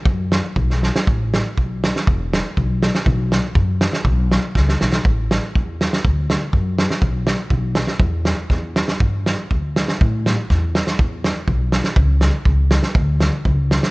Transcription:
<<
  \new Staff \with { instrumentName = "Upright bass" } { \clef bass \time 2/4 \key b \dorian \tempo 4 = 121 fis,4 b,,4 | \key a \major a,,4 b,,4 | e,,4 b,,4 | b,,4 fis,4 |
b,,4 cis,8 b,,8 | a,,4 e,4 | d,4 fis,4 | b,,4 b,,4 |
e,4 e,4 | g,4 d,4 | a,4 e,4 | e,4 b,,4 |
cis,4 cis,4 | d,4 cis,4 | }
  \new DrumStaff \with { instrumentName = "Drums" } \drummode { \time 2/4 bd8 sn8 bd16 sn16 sn16 sn16 | bd8 sn8 bd8 sn16 sn16 | bd8 sn8 bd8 sn16 sn16 | bd8 sn8 bd8 sn16 sn16 |
bd8 sn8 <bd sn>16 sn16 sn16 sn16 | bd8 sn8 bd8 sn16 sn16 | bd8 sn8 bd8 sn16 sn16 | bd8 sn8 bd8 sn16 sn16 |
bd8 sn8 <bd sn>8 sn16 sn16 | bd8 sn8 bd8 sn16 sn16 | bd8 sn8 <bd sn>8 sn16 sn16 | bd8 sn8 bd8 sn16 sn16 |
bd8 sn8 bd8 sn16 sn16 | bd8 sn8 bd8 sn16 sn16 | }
>>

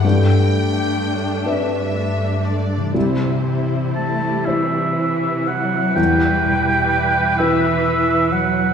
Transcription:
<<
  \new Staff \with { instrumentName = "Oboe" } { \time 6/8 \key e \minor \tempo 4. = 41 r2. | r4 a''8 e''4 fis''8 | g''4. e''4 fis''8 | }
  \new Staff \with { instrumentName = "Violin section" } { \time 6/8 \key e \minor g''4. e''4 d''8 | c''4. r4. | r2. | }
  \new Staff \with { instrumentName = "Felt piano" } { \time 6/8 \key e \minor g,4. <d' b'>4. | c,4. <e' c''>4. | e,4. <e' b'>4. | }
  \new Staff \with { instrumentName = "Harp" } { \time 6/8 \key e \minor <g, a d' b' d''>2. | <c e e' c''>2.~ | <c e e' c''>2. | }
  \new Staff \with { instrumentName = "Harp" } { \clef bass \time 6/8 \key e \minor r2. | r2. | e,8 b,4 e'8 b'8 fis8 | }
  \new Staff \with { instrumentName = "Viola section" } { \time 6/8 \key e \minor r8 <a d'>4. <a d'>4 | <g e'>8 <g e'>4. <e e'>4 | <e b'>2. | }
  \new Staff \with { instrumentName = "Cello section" } { \clef bass \time 6/8 \key e \minor << { r2. | r4 a8 e4 fis8 | g4. e4 fis8 | } \\ { g,4. g,4. | c4 r8 c4. | r2. | } >> }
>>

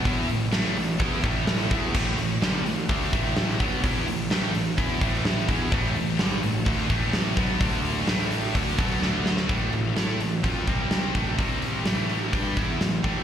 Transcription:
<<
  \new Staff \with { instrumentName = "Distorted electric guitar" } { \clef bass \time 4/4 \key a \minor \tempo 4 = 127 <e b e'>8 <a, e>8 <a, e a>8 <a, e>8 <e b e'>8 <a, e a>4 <e b e'>8 | <a, e a>8 <a, e>8 <g, d g>8 <a, e>8 <d a d'>8 <a, e a>4 <b, fis b>8 | <e b e'>8 <a, e>8 <a, e a>8 <a, e>8 <e b e'>8 <a, e a>4 <e b e'>8 | <a, e a>8 <a, e>8 <g, d g>8 <a, e>8 <d a d'>8 <a, e a>4 <b, fis b>8 |
<d a d'>4 <a, e a>4 <d a d'>8 <b, fis b>8 <d a d'>4 | <a, e a>8 <a, e>8 <a e' a'>8 <a, e>8 <f c' f'>8 <c g c'>4 <a, e a>8 | <c g c'>4 <a, e a>4 <g d' g'>8 <e b e'>8 <a, e>8 <a, e a>8 | }
  \new Staff \with { instrumentName = "Overdriven electric guitar" } { \clef bass \time 4/4 \key a \minor <e b e'>8 <a, e>8 <a, e a>8 <a, e>8 <e b e'>8 <a, e a>4 <e b e'>8 | <a, e a>8 <a, e>8 <g, d g>8 <a, e>8 <d a d'>8 <a, e a>4 <b, fis b>8 | <e b e'>8 <a, e>8 <a, e a>8 <a, e>8 <e b e'>8 <a, e a>4 <e b e'>8 | <a, e a>8 <a, e>8 <g, d g>8 <a, e>8 <d a d'>8 <a, e a>4 <b, fis b>8 |
<d a d'>4 <a, e a>4 <d a d'>8 <b, fis b>8 <d a d'>4 | <a, e a>8 <a, e>8 <a e' a'>8 <a, e>8 <f c' f'>8 <c g c'>4 <a, e a>8 | <c g c'>4 <a, e a>4 <g d' g'>8 <e b e'>8 <a, e>8 <a, e a>8 | }
  \new Staff \with { instrumentName = "Picked electric bass" } { \clef bass \time 4/4 \key a \minor e,8 a,,8 a,,8 a,,8 e,8 a,,4 e,8 | a,,8 a,,8 g,,8 a,,8 d,8 a,,4 b,,8 | e,8 a,,8 a,,8 a,,8 e,8 a,,4 e,8 | a,,8 a,,8 g,,8 a,,8 d,8 a,,4 b,,8 |
d,4 a,,4 d,8 b,,8 d,4 | a,,8 a,,8 a,8 a,,8 f,8 c,4 a,,8 | c,4 a,,4 g,8 e,8 a,,8 a,,8 | }
  \new DrumStaff \with { instrumentName = "Drums" } \drummode { \time 4/4 <hho bd>8 hho8 <hho sn>8 hho8 <hho bd>8 <hho bd>8 <hho sn>8 <hho bd>8 | <cymc bd>8 hho8 <hho sn>8 hho8 <hho bd>8 <hho bd>16 sn16 <hho sn>8 <hho bd>8 | <hho bd>8 hho8 <hho sn>8 hho8 <hho bd>8 <hho bd>16 sn16 <hho sn>8 <hho bd>8 | <hho bd>8 hho8 <hho sn>8 hho8 <hho bd>8 <hho bd>8 <hho sn>8 <hho bd>8 |
<hho bd>8 hho8 <hho sn>8 hho8 <hho bd>8 <hho bd>16 sn16 sn8 sn16 sn16 | <hho bd>8 hho8 <hho sn>8 hho8 <hho bd>8 <hho bd>8 <hho sn>8 <hho bd>8 | <hho bd>8 hho8 <hho sn>8 hho8 <hho bd>8 <hho bd>8 <hho sn>8 <hho bd>8 | }
>>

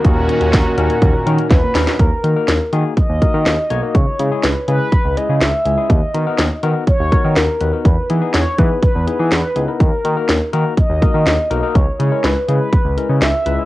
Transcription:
<<
  \new Staff \with { instrumentName = "Soft synth lead" } { \time 4/4 \key dis \phrygian \tempo 4 = 123 ais'2. b'4 | ais'4. r8 dis''2 | cis''4 b'8 b'4 dis''8 e''4 | dis''4. r8 cis''4 ais'4 |
b'4 cis''8 b'8 b'8 b'8 b'4 | ais'4. r8 dis''2 | cis''8 cis''8 b'8 b'4. e''4 | }
  \new Staff \with { instrumentName = "Tine electric piano" } { \time 4/4 \key dis \phrygian r8 <cis' dis' fis' ais'>8 r8 <cis' dis' fis' ais'>8 r8 <cis' dis' fis' ais'>8 r8 <cis' dis' fis' ais'>8 | r8 <ais dis' fis' ais'>16 <ais dis' fis' ais'>8 r16 <ais dis' fis' gis'>8 r8 <ais dis' fis' ais'>16 <ais dis' fis' ais'>8 r16 <ais dis' fis' cis''>16 <ais dis' fis' ais'>16 | r8 <gis cis' e' gis'>16 <gis cis' e' gis'>8 r16 <gis cis' e' gis'>8 r8 <gis cis' e' gis'>16 <gis cis' e' gis'>8 r16 <gis cis' e' gis'>16 <gis cis' e' gis'>16 | r8 <b dis' fis' ais'>16 <b dis' fis' ais'>8 r16 <b dis' fis' ais'>8 r8 <b dis' fis' ais'>16 <b dis' fis' ais'>8 r16 <b dis' fis' b'>16 <b dis' fis' ais'>16 |
r8 <b dis' e' gis'>16 <b dis' e' gis'>8 r16 <b dis' e' gis'>8 r8 <b dis' e' gis'>16 <b dis' e' gis'>8 r16 <b dis' e' gis'>16 <b dis' e' ais'>16 | r8 <ais dis' fis' ais'>16 <ais dis' fis' ais'>8 r16 <ais dis' fis' ais'>8 r8 <ais dis' fis' ais'>16 <ais dis' fis' ais'>8 r16 <ais dis' fis' ais'>16 <ais dis' fis' ais'>16 | r8 <gis cis' e' gis'>16 <gis cis' e' ais'>8 r16 <gis cis' e' gis'>8 r8 <gis cis' e' ais'>16 <gis cis' e' gis'>8 r16 <gis cis' e' b'>16 <gis cis' e' gis'>16 | }
  \new Staff \with { instrumentName = "Synth pluck" } { \time 4/4 \key dis \phrygian ais16 ais16 ais16 cis'16 ais16 ais16 ais16 ais16 ais16 ais16 ais16 cis'16 ais16 ais16 dis'16 cis''16 | r1 | r1 | r1 |
r1 | r1 | r1 | }
  \new Staff \with { instrumentName = "Analog synth pad" } { \clef bass \time 4/4 \key dis \phrygian <ais, dis cis' fis'>1 | r1 | r1 | r1 |
r1 | r1 | r1 | }
  \new Staff \with { instrumentName = "Analog synth bass" } { \clef bass \time 4/4 \key dis \phrygian dis,16 dis,16 r16 dis,16 dis,16 r16 dis,16 r16 dis,16 r16 dis16 r16 dis,16 r16 dis,16 r16 | dis,16 r16 dis16 r16 dis,16 r16 dis16 r8 dis,16 r16 dis16 dis,16 r16 b,,16 r16 | cis,16 r16 cis16 r16 cis,16 r16 cis16 r8 cis,16 r16 cis16 cis,16 r16 cis,16 r16 | dis,16 r16 dis16 r16 dis,16 r16 dis16 r8 dis,16 r16 dis16 dis,16 r16 dis,16 r16 |
e,16 r16 e16 r16 e,16 r16 e16 r8 e,16 r16 e16 e,16 r16 cis,16 r16 | dis,16 r16 dis16 r16 dis,16 r16 dis16 r8 dis,16 r16 dis16 dis,16 r16 b,,16 r16 | cis,16 r16 cis16 r16 cis,16 r16 cis16 r8 cis,16 r16 cis16 cis,16 r16 cis,16 r16 | }
  \new DrumStaff \with { instrumentName = "Drums" } \drummode { \time 4/4 <hh bd>8 hh16 hh16 <hh bd sn>8 hh16 hh16 <hh bd>8 hh16 hh16 <hh bd sn>8 <hho sn>16 <hh sn>16 | <hh bd>8 hh8 <hh sn>8 hh8 <hh bd>8 <hh bd>8 <hh sn>8 hh8 | <hh bd>8 hh8 <hh sn>8 hh8 <hh bd>8 hh8 <hh sn>8 hh8 | <hh bd>8 hh8 <hh sn>8 hh8 <hh bd>8 <hh bd>8 <hh sn>8 hh8 |
<hh bd>8 hh8 <hh sn>8 <hh bd>8 <hh bd>8 hh8 <hh sn>8 hh8 | <hh bd>8 hh8 <hh sn>8 hh8 <hh bd>8 <hh bd>8 <hh sn>8 hh8 | <hh bd>8 hh8 <hh sn>8 hh8 <hh bd>8 hh8 <hh sn>8 hh8 | }
>>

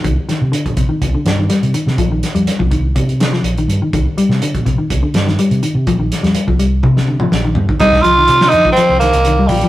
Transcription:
<<
  \new Staff \with { instrumentName = "Tenor saxophone" } { \time 4/4 \key c \minor \tempo 4 = 124 r1 | r1 | r1 | r1 |
ees'8 f'4 ees'8 c'8 bes4 g8 | }
  \new Staff \with { instrumentName = "Clean electric guitar" } { \clef bass \time 4/4 \key c \minor ees8 ees8 d8 c16 ees8 d8 ees16 g8 ees8 | f16 ees8 g8 f16 ees8 r8 d16 f8 ees8 ees16 | ees8 g8 d8 c16 ees8 d8 ees16 g8 ees8 | f16 ees8 g8 f16 g8 c8 d16 f8 ees8 ees16 |
g8 f16 ees8 d8 f16 f8 ees8 ees16 g16 f16 f16 | }
  \new Staff \with { instrumentName = "Fingered electric bass" } { \clef bass \time 4/4 \key c \minor c,16 r8 c16 r16 bes,,8 r16 c,16 r16 g,8 r16 c16 r16 c16 | bes,,8 r16 f,16 r16 c,8. c4 bes,,8 g,16 r16 | c,16 r8 c16 r16 bes,,8 r16 c,16 r16 g,8 r16 c16 r16 c16 | bes,,8 r16 f,16 r16 c,8. c4 bes,,8 g,16 r16 |
c,8 c,8 c8 f,16 r8 c,8 c,8. bes,,16 r16 | }
  \new DrumStaff \with { instrumentName = "Drums" } \drummode { \time 4/4 <hh bd>8 <hh sn>8 hh16 <hh bd>16 <hh bd>8 <hh bd>8 <hh sn>8 <hh sn>16 hh16 hh16 sn16 | <hh bd>8 <hh sn>16 hh16 <hh sn>16 bd16 <hh bd>8 <hh bd>16 hh16 <hh sn>16 sn16 hh16 hh16 hh8 | <hh bd>8 hh16 sn16 hh16 <hh bd>16 <hh bd>8 <hh bd>8 <hh sn>16 sn16 hh16 hh16 hh8 | <hh bd>8 <hh sn>16 <hh sn>16 hh16 bd16 hh8 <bd tommh>16 sn8 toml16 sn8 tomfh16 bd16 |
<hh bd sn>16 <bd sn>16 hh8 hh16 sn16 hh16 bd16 hh8 <hh sn>16 hh16 hh8 <hho bd>16 hh16 | }
>>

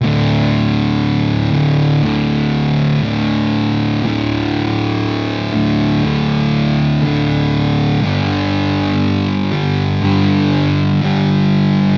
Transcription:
<<
  \new Staff \with { instrumentName = "Distorted electric guitar" } { \clef bass \time 4/4 \key g \minor \tempo 4 = 60 <d, a, d>2 <d, a, d>2 | <d, a, d>2 <d, a, d>2 | <g, d g>2 <g, d g>2 | }
  \new Staff \with { instrumentName = "Distorted electric guitar" } { \clef bass \time 4/4 \key g \minor <d, a, d>4. <d, a, d>4. <d, a, d>4 | <d, a, d>4. <d, a, d>4. <d, a, d>4 | <g, d g>4. <g, d g>4. <g, d g>4 | }
>>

